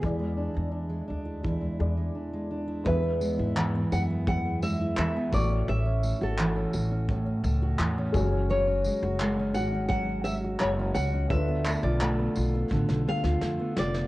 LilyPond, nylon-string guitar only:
\new Staff \with { instrumentName = "Nylon-string guitar" } { \time 4/4 \key e \mixolydian \tempo 4 = 85 gis'2.~ gis'8 r8 | b'4. fis''8 fis''8 e''8 e''8 d''8 | e''8. a'2 r4 r16 | cis''4. fis''8 fis''8 e''8 cis''8 fis''8 |
e''8. d''4.~ d''16 f''4 d''8 | }